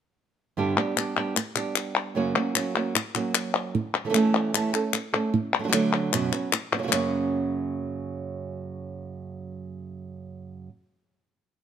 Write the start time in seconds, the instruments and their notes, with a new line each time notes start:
0.57 nylon-string guitar G2 D3 G3 B3 D4 G4
0.77 nylon-string guitar G3 B3 D4 G4
0.96 nylon-string guitar G3 B3 D4 G4, clap
1.17 nylon-string guitar G3 B3 D4 G4, clap
1.36 muted nylon-string guitar stroke, clap
1.56 nylon-string guitar G3 B3 D4 G4, clap
1.76 clap
2.15 nylon-string guitar F#2 C#3 F#3 A#3 C#4 F#4
2.35 nylon-string guitar F#3 A#3 C#4 F#4
2.55 nylon-string guitar F#3 A#3 C#4 F#4, clap
2.75 nylon-string guitar F#3 A#3 C#4 F#4, clap
2.95 muted nylon-string guitar stroke, clap
3.15 nylon-string guitar F#3 A#3 C#4 F#4, clap
3.35 clap
3.54 clap
3.75 muted nylon-string guitar stroke
4.05 nylon-string guitar E3 A3 C#4 A4
4.10 nylon-string guitar E3 A3 C#4 A4
4.14 nylon-string guitar E3 A3 C#4 A4, clap
4.54 nylon-string guitar E3 A3 C#4 A4, clap
4.73 nylon-string guitar A3 C#4 A4, clap
4.93 muted nylon-string guitar stroke, clap
5.13 nylon-string guitar A3 C#4 A4, clap
5.34 muted nylon-string guitar stroke
5.59 nylon-string guitar F#3 A3 D4 F#4
5.64 nylon-string guitar F#3 A3 D4 F#4
5.68 nylon-string guitar F#3 A3 D4 F#4
5.73 nylon-string guitar D3 F#3 A3 D4 F#4, clap
5.93 clap
6.12 nylon-string guitar F#2 B2 F#3 B3 C#4 F#4, clap
6.32 nylon-string guitar F#3 B3 C#4 F#4, clap
6.52 muted nylon-string guitar stroke, clap
6.72 nylon-string guitar F#3 B3 C#4 F#4, clap
6.78 nylon-string guitar C#3 F#3 A#3 C#4 F#4
6.83 nylon-string guitar C#3 F#3 A#3 C#4 F#4
6.88 nylon-string guitar C#3 F#3 A#3 C#4 F#4
6.92 nylon-string guitar F#2 C#3 F#3 A#3 C#4 F#4, clap